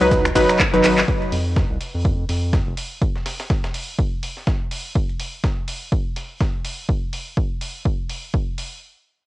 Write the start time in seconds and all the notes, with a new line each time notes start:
0.01 C#2 F#3 D#4 B4, cabasa
0.11 kick, snare, closed hi-hat, ride, cabasa
0.25 finger snap, cabasa
0.35 G#1 F#3 D#4 B4, kick, snare, closed hi-hat, open hi-hat, ride, cabasa
0.49 finger snap, snare, closed hi-hat, cabasa
0.59 kick, snare, clap, closed hi-hat, ride, cabasa
0.73 G#1 F#3 D#4 B4, snare, closed hi-hat, cabasa
0.84 F#3 D#4 B4, snare, clap, closed hi-hat, open hi-hat, ride, cabasa
0.98 snare, clap, closed hi-hat, cabasa
1.08 kick, closed hi-hat
1.22 closed hi-hat
1.32 F2, closed hi-hat, open hi-hat
1.56 kick, snare, closed hi-hat
1.70 C2
1.81 closed hi-hat, open hi-hat
1.95 F2
2.05 kick, closed hi-hat
2.29 F2, snare, closed hi-hat, open hi-hat
2.53 kick, snare, closed hi-hat
2.67 F1
2.77 closed hi-hat, open hi-hat
3.02 kick, closed hi-hat
3.16 snare
3.26 snare, closed hi-hat, open hi-hat
3.40 snare, closed hi-hat
3.50 kick, snare, closed hi-hat
3.64 snare, closed hi-hat
3.74 open hi-hat
3.98 kick, closed hi-hat
4.23 closed hi-hat, open hi-hat
4.37 snare
4.47 kick, snare, closed hi-hat
4.71 closed hi-hat, open hi-hat
4.95 kick, closed hi-hat
5.09 closed hi-hat
5.19 closed hi-hat, open hi-hat
5.44 kick, snare, closed hi-hat
5.68 closed hi-hat, open hi-hat
5.92 kick, closed hi-hat
6.16 snare, closed hi-hat, open hi-hat
6.40 kick, snare, closed hi-hat
6.65 closed hi-hat, open hi-hat
6.89 kick
7.13 open hi-hat
7.37 kick
7.61 open hi-hat
7.86 kick
8.10 open hi-hat
8.34 kick
8.58 open hi-hat